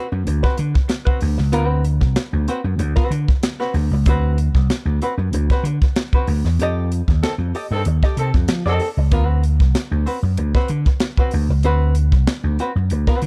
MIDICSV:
0, 0, Header, 1, 6, 480
1, 0, Start_track
1, 0, Tempo, 631579
1, 1169, Time_signature, 4, 2, 24, 8
1, 10083, End_track
2, 0, Start_track
2, 0, Title_t, "Hollow-body jazz guitar"
2, 0, Program_c, 0, 26
2, 327, Note_on_c, 0, 71, 81
2, 331, Note_on_c, 0, 66, 76
2, 339, Note_on_c, 0, 60, 65
2, 425, Note_off_c, 0, 71, 0
2, 427, Note_off_c, 0, 60, 0
2, 427, Note_off_c, 0, 66, 0
2, 800, Note_on_c, 0, 71, 78
2, 808, Note_on_c, 0, 60, 61
2, 809, Note_on_c, 0, 66, 72
2, 902, Note_off_c, 0, 71, 0
2, 906, Note_off_c, 0, 60, 0
2, 907, Note_off_c, 0, 66, 0
2, 1157, Note_on_c, 0, 59, 93
2, 1161, Note_on_c, 0, 65, 94
2, 1166, Note_on_c, 0, 70, 111
2, 1252, Note_off_c, 0, 65, 0
2, 1252, Note_on_c, 0, 66, 94
2, 1256, Note_off_c, 0, 59, 0
2, 1256, Note_on_c, 0, 60, 93
2, 1257, Note_off_c, 0, 70, 0
2, 1257, Note_on_c, 0, 71, 111
2, 1385, Note_off_c, 0, 60, 0
2, 1387, Note_off_c, 0, 66, 0
2, 1389, Note_off_c, 0, 71, 0
2, 1887, Note_on_c, 0, 60, 80
2, 1893, Note_on_c, 0, 66, 71
2, 1896, Note_on_c, 0, 71, 73
2, 1971, Note_off_c, 0, 60, 0
2, 1974, Note_off_c, 0, 66, 0
2, 1976, Note_off_c, 0, 71, 0
2, 2248, Note_on_c, 0, 71, 89
2, 2250, Note_on_c, 0, 66, 69
2, 2256, Note_on_c, 0, 60, 75
2, 2360, Note_off_c, 0, 60, 0
2, 2366, Note_off_c, 0, 66, 0
2, 2370, Note_off_c, 0, 71, 0
2, 2734, Note_on_c, 0, 71, 85
2, 2737, Note_on_c, 0, 66, 78
2, 2744, Note_on_c, 0, 60, 55
2, 2830, Note_off_c, 0, 71, 0
2, 2831, Note_off_c, 0, 66, 0
2, 2835, Note_off_c, 0, 60, 0
2, 3095, Note_on_c, 0, 60, 85
2, 3105, Note_on_c, 0, 66, 98
2, 3109, Note_on_c, 0, 71, 98
2, 3315, Note_off_c, 0, 60, 0
2, 3319, Note_off_c, 0, 66, 0
2, 3321, Note_off_c, 0, 71, 0
2, 3817, Note_on_c, 0, 60, 63
2, 3819, Note_on_c, 0, 66, 64
2, 3824, Note_on_c, 0, 71, 71
2, 3897, Note_off_c, 0, 60, 0
2, 3898, Note_off_c, 0, 66, 0
2, 3900, Note_off_c, 0, 71, 0
2, 4189, Note_on_c, 0, 71, 76
2, 4193, Note_on_c, 0, 66, 66
2, 4198, Note_on_c, 0, 60, 55
2, 4278, Note_off_c, 0, 71, 0
2, 4280, Note_off_c, 0, 66, 0
2, 4282, Note_off_c, 0, 60, 0
2, 4668, Note_on_c, 0, 71, 74
2, 4673, Note_on_c, 0, 66, 75
2, 4675, Note_on_c, 0, 60, 57
2, 4757, Note_off_c, 0, 71, 0
2, 4760, Note_off_c, 0, 66, 0
2, 4761, Note_off_c, 0, 60, 0
2, 5028, Note_on_c, 0, 67, 90
2, 5033, Note_on_c, 0, 69, 100
2, 5038, Note_on_c, 0, 75, 105
2, 5242, Note_off_c, 0, 67, 0
2, 5244, Note_off_c, 0, 69, 0
2, 5247, Note_off_c, 0, 75, 0
2, 5737, Note_on_c, 0, 67, 62
2, 5742, Note_on_c, 0, 69, 68
2, 5746, Note_on_c, 0, 75, 79
2, 5817, Note_off_c, 0, 67, 0
2, 5820, Note_off_c, 0, 69, 0
2, 5822, Note_off_c, 0, 75, 0
2, 6107, Note_on_c, 0, 75, 92
2, 6112, Note_on_c, 0, 69, 79
2, 6116, Note_on_c, 0, 67, 69
2, 6197, Note_off_c, 0, 75, 0
2, 6200, Note_off_c, 0, 69, 0
2, 6202, Note_off_c, 0, 67, 0
2, 6579, Note_on_c, 0, 75, 77
2, 6587, Note_on_c, 0, 69, 76
2, 6592, Note_on_c, 0, 67, 59
2, 6683, Note_off_c, 0, 67, 0
2, 6688, Note_off_c, 0, 69, 0
2, 6694, Note_off_c, 0, 75, 0
2, 6932, Note_on_c, 0, 59, 86
2, 6938, Note_on_c, 0, 65, 86
2, 6941, Note_on_c, 0, 70, 95
2, 7023, Note_off_c, 0, 59, 0
2, 7023, Note_on_c, 0, 60, 86
2, 7029, Note_off_c, 0, 65, 0
2, 7029, Note_on_c, 0, 66, 86
2, 7032, Note_off_c, 0, 70, 0
2, 7032, Note_on_c, 0, 71, 95
2, 7153, Note_off_c, 0, 60, 0
2, 7156, Note_off_c, 0, 66, 0
2, 7158, Note_off_c, 0, 71, 0
2, 7647, Note_on_c, 0, 60, 57
2, 7653, Note_on_c, 0, 66, 58
2, 7656, Note_on_c, 0, 71, 69
2, 7732, Note_off_c, 0, 60, 0
2, 7735, Note_off_c, 0, 66, 0
2, 7737, Note_off_c, 0, 71, 0
2, 8017, Note_on_c, 0, 71, 84
2, 8021, Note_on_c, 0, 66, 71
2, 8027, Note_on_c, 0, 60, 67
2, 8112, Note_off_c, 0, 71, 0
2, 8114, Note_off_c, 0, 66, 0
2, 8117, Note_off_c, 0, 60, 0
2, 8500, Note_on_c, 0, 71, 77
2, 8506, Note_on_c, 0, 66, 65
2, 8510, Note_on_c, 0, 60, 62
2, 8593, Note_off_c, 0, 71, 0
2, 8596, Note_off_c, 0, 66, 0
2, 8598, Note_off_c, 0, 60, 0
2, 8849, Note_on_c, 0, 60, 84
2, 8855, Note_on_c, 0, 66, 93
2, 8858, Note_on_c, 0, 71, 96
2, 9072, Note_off_c, 0, 60, 0
2, 9075, Note_off_c, 0, 66, 0
2, 9076, Note_off_c, 0, 71, 0
2, 9574, Note_on_c, 0, 60, 64
2, 9577, Note_on_c, 0, 66, 69
2, 9584, Note_on_c, 0, 71, 78
2, 9655, Note_off_c, 0, 60, 0
2, 9656, Note_off_c, 0, 66, 0
2, 9660, Note_off_c, 0, 71, 0
2, 9938, Note_on_c, 0, 71, 88
2, 9943, Note_on_c, 0, 66, 68
2, 9949, Note_on_c, 0, 60, 68
2, 10037, Note_off_c, 0, 66, 0
2, 10038, Note_off_c, 0, 60, 0
2, 10041, Note_off_c, 0, 71, 0
2, 10083, End_track
3, 0, Start_track
3, 0, Title_t, "Horn section"
3, 0, Program_c, 1, 61
3, 5487, Note_on_c, 1, 69, 93
3, 5492, Note_on_c, 1, 51, 71
3, 5492, Note_on_c, 1, 60, 79
3, 5569, Note_off_c, 1, 69, 0
3, 5573, Note_off_c, 1, 51, 0
3, 5573, Note_off_c, 1, 60, 0
3, 5863, Note_on_c, 1, 51, 91
3, 5863, Note_on_c, 1, 60, 89
3, 5865, Note_on_c, 1, 69, 98
3, 5933, Note_off_c, 1, 51, 0
3, 5934, Note_off_c, 1, 60, 0
3, 5935, Note_off_c, 1, 69, 0
3, 6218, Note_on_c, 1, 60, 81
3, 6218, Note_on_c, 1, 69, 93
3, 6219, Note_on_c, 1, 51, 72
3, 6297, Note_off_c, 1, 60, 0
3, 6297, Note_off_c, 1, 69, 0
3, 6298, Note_off_c, 1, 51, 0
3, 6591, Note_on_c, 1, 51, 94
3, 6591, Note_on_c, 1, 69, 104
3, 6594, Note_on_c, 1, 60, 95
3, 6740, Note_off_c, 1, 51, 0
3, 6740, Note_off_c, 1, 69, 0
3, 6742, Note_off_c, 1, 60, 0
3, 10083, End_track
4, 0, Start_track
4, 0, Title_t, "Slap bass"
4, 0, Program_c, 2, 36
4, 91, Note_on_c, 2, 42, 97
4, 189, Note_off_c, 2, 42, 0
4, 205, Note_on_c, 2, 38, 92
4, 315, Note_off_c, 2, 38, 0
4, 446, Note_on_c, 2, 50, 92
4, 556, Note_off_c, 2, 50, 0
4, 927, Note_on_c, 2, 38, 82
4, 1036, Note_off_c, 2, 38, 0
4, 1054, Note_on_c, 2, 37, 94
4, 1167, Note_off_c, 2, 37, 0
4, 1167, Note_on_c, 2, 38, 114
4, 1531, Note_off_c, 2, 38, 0
4, 1531, Note_on_c, 2, 36, 91
4, 1630, Note_off_c, 2, 36, 0
4, 1770, Note_on_c, 2, 38, 89
4, 1869, Note_off_c, 2, 38, 0
4, 2008, Note_on_c, 2, 42, 99
4, 2108, Note_off_c, 2, 42, 0
4, 2116, Note_on_c, 2, 38, 92
4, 2230, Note_off_c, 2, 38, 0
4, 2360, Note_on_c, 2, 50, 97
4, 2473, Note_off_c, 2, 50, 0
4, 2842, Note_on_c, 2, 38, 82
4, 2954, Note_off_c, 2, 38, 0
4, 2971, Note_on_c, 2, 37, 88
4, 3088, Note_off_c, 2, 37, 0
4, 3088, Note_on_c, 2, 38, 103
4, 3402, Note_off_c, 2, 38, 0
4, 3455, Note_on_c, 2, 36, 86
4, 3553, Note_off_c, 2, 36, 0
4, 3689, Note_on_c, 2, 38, 86
4, 3789, Note_off_c, 2, 38, 0
4, 3933, Note_on_c, 2, 42, 101
4, 4032, Note_off_c, 2, 42, 0
4, 4055, Note_on_c, 2, 38, 93
4, 4162, Note_off_c, 2, 38, 0
4, 4282, Note_on_c, 2, 50, 93
4, 4394, Note_off_c, 2, 50, 0
4, 4769, Note_on_c, 2, 38, 81
4, 4879, Note_off_c, 2, 38, 0
4, 4896, Note_on_c, 2, 40, 84
4, 4993, Note_off_c, 2, 40, 0
4, 5010, Note_on_c, 2, 41, 105
4, 5324, Note_off_c, 2, 41, 0
4, 5381, Note_on_c, 2, 39, 86
4, 5476, Note_off_c, 2, 39, 0
4, 5610, Note_on_c, 2, 41, 104
4, 5710, Note_off_c, 2, 41, 0
4, 5857, Note_on_c, 2, 43, 94
4, 5954, Note_off_c, 2, 43, 0
4, 5972, Note_on_c, 2, 39, 95
4, 6080, Note_off_c, 2, 39, 0
4, 6208, Note_on_c, 2, 48, 89
4, 6318, Note_off_c, 2, 48, 0
4, 6339, Note_on_c, 2, 41, 80
4, 6435, Note_off_c, 2, 41, 0
4, 6451, Note_on_c, 2, 53, 104
4, 6560, Note_off_c, 2, 53, 0
4, 6576, Note_on_c, 2, 41, 87
4, 6673, Note_off_c, 2, 41, 0
4, 6818, Note_on_c, 2, 37, 84
4, 6929, Note_off_c, 2, 37, 0
4, 6929, Note_on_c, 2, 38, 107
4, 7297, Note_off_c, 2, 38, 0
4, 7297, Note_on_c, 2, 36, 89
4, 7394, Note_off_c, 2, 36, 0
4, 7534, Note_on_c, 2, 38, 93
4, 7632, Note_off_c, 2, 38, 0
4, 7772, Note_on_c, 2, 42, 109
4, 7871, Note_off_c, 2, 42, 0
4, 7890, Note_on_c, 2, 38, 93
4, 7999, Note_off_c, 2, 38, 0
4, 8128, Note_on_c, 2, 50, 101
4, 8238, Note_off_c, 2, 50, 0
4, 8615, Note_on_c, 2, 38, 89
4, 8722, Note_off_c, 2, 38, 0
4, 8734, Note_on_c, 2, 37, 92
4, 8851, Note_off_c, 2, 37, 0
4, 8851, Note_on_c, 2, 38, 120
4, 9211, Note_off_c, 2, 38, 0
4, 9211, Note_on_c, 2, 36, 92
4, 9310, Note_off_c, 2, 36, 0
4, 9452, Note_on_c, 2, 38, 90
4, 9550, Note_off_c, 2, 38, 0
4, 9694, Note_on_c, 2, 42, 94
4, 9791, Note_off_c, 2, 42, 0
4, 9809, Note_on_c, 2, 38, 93
4, 9917, Note_off_c, 2, 38, 0
4, 10048, Note_on_c, 2, 50, 86
4, 10083, Note_off_c, 2, 50, 0
4, 10083, End_track
5, 0, Start_track
5, 0, Title_t, "Muted hollow-body jazz guitar strokes"
5, 90, Note_on_c, 9, 29, 50
5, 166, Note_off_c, 9, 29, 0
5, 205, Note_on_c, 9, 29, 46
5, 281, Note_off_c, 9, 29, 0
5, 436, Note_on_c, 9, 29, 41
5, 512, Note_off_c, 9, 29, 0
5, 565, Note_on_c, 9, 29, 40
5, 641, Note_off_c, 9, 29, 0
5, 670, Note_on_c, 9, 29, 40
5, 746, Note_off_c, 9, 29, 0
5, 917, Note_on_c, 9, 29, 38
5, 993, Note_off_c, 9, 29, 0
5, 1047, Note_on_c, 9, 29, 47
5, 1123, Note_off_c, 9, 29, 0
5, 1525, Note_on_c, 9, 29, 57
5, 1601, Note_off_c, 9, 29, 0
5, 1642, Note_on_c, 9, 29, 42
5, 1718, Note_off_c, 9, 29, 0
5, 2010, Note_on_c, 9, 29, 41
5, 2086, Note_off_c, 9, 29, 0
5, 2125, Note_on_c, 9, 29, 41
5, 2201, Note_off_c, 9, 29, 0
5, 2369, Note_on_c, 9, 29, 42
5, 2445, Note_off_c, 9, 29, 0
5, 2493, Note_on_c, 9, 29, 44
5, 2569, Note_off_c, 9, 29, 0
5, 2613, Note_on_c, 9, 29, 41
5, 2689, Note_off_c, 9, 29, 0
5, 2858, Note_on_c, 9, 29, 41
5, 2934, Note_off_c, 9, 29, 0
5, 2991, Note_on_c, 9, 29, 50
5, 3067, Note_off_c, 9, 29, 0
5, 3470, Note_on_c, 9, 29, 44
5, 3546, Note_off_c, 9, 29, 0
5, 3583, Note_on_c, 9, 29, 41
5, 3659, Note_off_c, 9, 29, 0
5, 3943, Note_on_c, 9, 29, 56
5, 4019, Note_off_c, 9, 29, 0
5, 4059, Note_on_c, 9, 29, 49
5, 4135, Note_off_c, 9, 29, 0
5, 4299, Note_on_c, 9, 29, 45
5, 4375, Note_off_c, 9, 29, 0
5, 4434, Note_on_c, 9, 29, 51
5, 4510, Note_off_c, 9, 29, 0
5, 4543, Note_on_c, 9, 29, 40
5, 4619, Note_off_c, 9, 29, 0
5, 4790, Note_on_c, 9, 29, 47
5, 4866, Note_off_c, 9, 29, 0
5, 4913, Note_on_c, 9, 29, 50
5, 4989, Note_off_c, 9, 29, 0
5, 5395, Note_on_c, 9, 29, 54
5, 5471, Note_off_c, 9, 29, 0
5, 5503, Note_on_c, 9, 29, 40
5, 5579, Note_off_c, 9, 29, 0
5, 5864, Note_on_c, 9, 29, 45
5, 5940, Note_off_c, 9, 29, 0
5, 5984, Note_on_c, 9, 29, 36
5, 6060, Note_off_c, 9, 29, 0
5, 6220, Note_on_c, 9, 29, 39
5, 6296, Note_off_c, 9, 29, 0
5, 6343, Note_on_c, 9, 29, 40
5, 6419, Note_off_c, 9, 29, 0
5, 6453, Note_on_c, 9, 29, 39
5, 6529, Note_off_c, 9, 29, 0
5, 6693, Note_on_c, 9, 29, 42
5, 6769, Note_off_c, 9, 29, 0
5, 6829, Note_on_c, 9, 29, 40
5, 6905, Note_off_c, 9, 29, 0
5, 7301, Note_on_c, 9, 29, 55
5, 7377, Note_off_c, 9, 29, 0
5, 7416, Note_on_c, 9, 29, 35
5, 7492, Note_off_c, 9, 29, 0
5, 7782, Note_on_c, 9, 29, 44
5, 7858, Note_off_c, 9, 29, 0
5, 7889, Note_on_c, 9, 29, 43
5, 7965, Note_off_c, 9, 29, 0
5, 8132, Note_on_c, 9, 29, 42
5, 8208, Note_off_c, 9, 29, 0
5, 8262, Note_on_c, 9, 29, 55
5, 8338, Note_off_c, 9, 29, 0
5, 8375, Note_on_c, 9, 29, 45
5, 8451, Note_off_c, 9, 29, 0
5, 8613, Note_on_c, 9, 29, 42
5, 8689, Note_off_c, 9, 29, 0
5, 8743, Note_on_c, 9, 29, 53
5, 8819, Note_off_c, 9, 29, 0
5, 9218, Note_on_c, 9, 29, 45
5, 9294, Note_off_c, 9, 29, 0
5, 9337, Note_on_c, 9, 29, 36
5, 9413, Note_off_c, 9, 29, 0
5, 9702, Note_on_c, 9, 29, 51
5, 9778, Note_off_c, 9, 29, 0
5, 9818, Note_on_c, 9, 29, 40
5, 9894, Note_off_c, 9, 29, 0
5, 10046, Note_on_c, 9, 29, 44
5, 10083, Note_off_c, 9, 29, 0
5, 10083, End_track
6, 0, Start_track
6, 0, Title_t, "Drums"
6, 204, Note_on_c, 9, 42, 82
6, 280, Note_off_c, 9, 42, 0
6, 333, Note_on_c, 9, 36, 89
6, 336, Note_on_c, 9, 38, 36
6, 409, Note_off_c, 9, 36, 0
6, 412, Note_off_c, 9, 38, 0
6, 437, Note_on_c, 9, 42, 79
6, 513, Note_off_c, 9, 42, 0
6, 573, Note_on_c, 9, 36, 95
6, 573, Note_on_c, 9, 38, 34
6, 649, Note_off_c, 9, 36, 0
6, 649, Note_off_c, 9, 38, 0
6, 676, Note_on_c, 9, 42, 89
6, 681, Note_on_c, 9, 38, 89
6, 752, Note_off_c, 9, 42, 0
6, 757, Note_off_c, 9, 38, 0
6, 811, Note_on_c, 9, 36, 93
6, 887, Note_off_c, 9, 36, 0
6, 916, Note_on_c, 9, 46, 71
6, 992, Note_off_c, 9, 46, 0
6, 1050, Note_on_c, 9, 38, 38
6, 1126, Note_off_c, 9, 38, 0
6, 1161, Note_on_c, 9, 42, 94
6, 1237, Note_off_c, 9, 42, 0
6, 1402, Note_on_c, 9, 42, 73
6, 1478, Note_off_c, 9, 42, 0
6, 1530, Note_on_c, 9, 36, 80
6, 1531, Note_on_c, 9, 38, 32
6, 1606, Note_off_c, 9, 36, 0
6, 1607, Note_off_c, 9, 38, 0
6, 1641, Note_on_c, 9, 42, 74
6, 1642, Note_on_c, 9, 38, 102
6, 1717, Note_off_c, 9, 42, 0
6, 1718, Note_off_c, 9, 38, 0
6, 1883, Note_on_c, 9, 42, 73
6, 1959, Note_off_c, 9, 42, 0
6, 2120, Note_on_c, 9, 42, 81
6, 2196, Note_off_c, 9, 42, 0
6, 2254, Note_on_c, 9, 36, 96
6, 2254, Note_on_c, 9, 38, 37
6, 2330, Note_off_c, 9, 36, 0
6, 2330, Note_off_c, 9, 38, 0
6, 2368, Note_on_c, 9, 42, 74
6, 2444, Note_off_c, 9, 42, 0
6, 2496, Note_on_c, 9, 36, 88
6, 2499, Note_on_c, 9, 38, 34
6, 2572, Note_off_c, 9, 36, 0
6, 2575, Note_off_c, 9, 38, 0
6, 2605, Note_on_c, 9, 42, 91
6, 2610, Note_on_c, 9, 38, 106
6, 2681, Note_off_c, 9, 42, 0
6, 2686, Note_off_c, 9, 38, 0
6, 2742, Note_on_c, 9, 38, 35
6, 2818, Note_off_c, 9, 38, 0
6, 2843, Note_on_c, 9, 46, 71
6, 2919, Note_off_c, 9, 46, 0
6, 3083, Note_on_c, 9, 42, 89
6, 3087, Note_on_c, 9, 36, 114
6, 3159, Note_off_c, 9, 42, 0
6, 3163, Note_off_c, 9, 36, 0
6, 3329, Note_on_c, 9, 42, 72
6, 3405, Note_off_c, 9, 42, 0
6, 3456, Note_on_c, 9, 36, 80
6, 3460, Note_on_c, 9, 38, 34
6, 3532, Note_off_c, 9, 36, 0
6, 3536, Note_off_c, 9, 38, 0
6, 3572, Note_on_c, 9, 42, 75
6, 3573, Note_on_c, 9, 38, 94
6, 3648, Note_off_c, 9, 42, 0
6, 3649, Note_off_c, 9, 38, 0
6, 3813, Note_on_c, 9, 42, 77
6, 3889, Note_off_c, 9, 42, 0
6, 4051, Note_on_c, 9, 42, 89
6, 4127, Note_off_c, 9, 42, 0
6, 4180, Note_on_c, 9, 36, 93
6, 4184, Note_on_c, 9, 38, 33
6, 4256, Note_off_c, 9, 36, 0
6, 4260, Note_off_c, 9, 38, 0
6, 4294, Note_on_c, 9, 42, 79
6, 4370, Note_off_c, 9, 42, 0
6, 4421, Note_on_c, 9, 36, 93
6, 4425, Note_on_c, 9, 38, 33
6, 4497, Note_off_c, 9, 36, 0
6, 4501, Note_off_c, 9, 38, 0
6, 4528, Note_on_c, 9, 42, 74
6, 4533, Note_on_c, 9, 38, 107
6, 4604, Note_off_c, 9, 42, 0
6, 4609, Note_off_c, 9, 38, 0
6, 4658, Note_on_c, 9, 36, 94
6, 4734, Note_off_c, 9, 36, 0
6, 4767, Note_on_c, 9, 46, 72
6, 4843, Note_off_c, 9, 46, 0
6, 4900, Note_on_c, 9, 38, 41
6, 4976, Note_off_c, 9, 38, 0
6, 5013, Note_on_c, 9, 42, 91
6, 5089, Note_off_c, 9, 42, 0
6, 5257, Note_on_c, 9, 42, 67
6, 5333, Note_off_c, 9, 42, 0
6, 5380, Note_on_c, 9, 36, 82
6, 5387, Note_on_c, 9, 38, 36
6, 5456, Note_off_c, 9, 36, 0
6, 5463, Note_off_c, 9, 38, 0
6, 5498, Note_on_c, 9, 42, 71
6, 5499, Note_on_c, 9, 38, 109
6, 5574, Note_off_c, 9, 42, 0
6, 5575, Note_off_c, 9, 38, 0
6, 5736, Note_on_c, 9, 46, 49
6, 5812, Note_off_c, 9, 46, 0
6, 5967, Note_on_c, 9, 42, 91
6, 6043, Note_off_c, 9, 42, 0
6, 6100, Note_on_c, 9, 36, 91
6, 6105, Note_on_c, 9, 38, 40
6, 6176, Note_off_c, 9, 36, 0
6, 6181, Note_off_c, 9, 38, 0
6, 6211, Note_on_c, 9, 42, 81
6, 6287, Note_off_c, 9, 42, 0
6, 6339, Note_on_c, 9, 36, 86
6, 6339, Note_on_c, 9, 38, 31
6, 6415, Note_off_c, 9, 36, 0
6, 6415, Note_off_c, 9, 38, 0
6, 6445, Note_on_c, 9, 42, 83
6, 6450, Note_on_c, 9, 38, 109
6, 6521, Note_off_c, 9, 42, 0
6, 6526, Note_off_c, 9, 38, 0
6, 6583, Note_on_c, 9, 38, 33
6, 6659, Note_off_c, 9, 38, 0
6, 6685, Note_on_c, 9, 46, 70
6, 6761, Note_off_c, 9, 46, 0
6, 6927, Note_on_c, 9, 42, 82
6, 6929, Note_on_c, 9, 36, 108
6, 7003, Note_off_c, 9, 42, 0
6, 7005, Note_off_c, 9, 36, 0
6, 7170, Note_on_c, 9, 42, 72
6, 7246, Note_off_c, 9, 42, 0
6, 7297, Note_on_c, 9, 36, 86
6, 7301, Note_on_c, 9, 38, 35
6, 7373, Note_off_c, 9, 36, 0
6, 7377, Note_off_c, 9, 38, 0
6, 7409, Note_on_c, 9, 42, 80
6, 7410, Note_on_c, 9, 38, 98
6, 7485, Note_off_c, 9, 42, 0
6, 7486, Note_off_c, 9, 38, 0
6, 7651, Note_on_c, 9, 46, 51
6, 7727, Note_off_c, 9, 46, 0
6, 7885, Note_on_c, 9, 42, 94
6, 7961, Note_off_c, 9, 42, 0
6, 8015, Note_on_c, 9, 36, 88
6, 8016, Note_on_c, 9, 38, 36
6, 8091, Note_off_c, 9, 36, 0
6, 8092, Note_off_c, 9, 38, 0
6, 8120, Note_on_c, 9, 42, 74
6, 8196, Note_off_c, 9, 42, 0
6, 8249, Note_on_c, 9, 38, 34
6, 8254, Note_on_c, 9, 36, 85
6, 8325, Note_off_c, 9, 38, 0
6, 8330, Note_off_c, 9, 36, 0
6, 8358, Note_on_c, 9, 42, 82
6, 8363, Note_on_c, 9, 38, 103
6, 8434, Note_off_c, 9, 42, 0
6, 8439, Note_off_c, 9, 38, 0
6, 8493, Note_on_c, 9, 36, 87
6, 8569, Note_off_c, 9, 36, 0
6, 8596, Note_on_c, 9, 46, 63
6, 8672, Note_off_c, 9, 46, 0
6, 8841, Note_on_c, 9, 42, 81
6, 8917, Note_off_c, 9, 42, 0
6, 9081, Note_on_c, 9, 42, 78
6, 9157, Note_off_c, 9, 42, 0
6, 9212, Note_on_c, 9, 36, 90
6, 9213, Note_on_c, 9, 38, 32
6, 9288, Note_off_c, 9, 36, 0
6, 9289, Note_off_c, 9, 38, 0
6, 9328, Note_on_c, 9, 38, 112
6, 9328, Note_on_c, 9, 42, 67
6, 9404, Note_off_c, 9, 38, 0
6, 9404, Note_off_c, 9, 42, 0
6, 9568, Note_on_c, 9, 42, 76
6, 9644, Note_off_c, 9, 42, 0
6, 9804, Note_on_c, 9, 42, 81
6, 9880, Note_off_c, 9, 42, 0
6, 9935, Note_on_c, 9, 36, 89
6, 9938, Note_on_c, 9, 38, 34
6, 10011, Note_off_c, 9, 36, 0
6, 10014, Note_off_c, 9, 38, 0
6, 10044, Note_on_c, 9, 42, 75
6, 10083, Note_off_c, 9, 42, 0
6, 10083, End_track
0, 0, End_of_file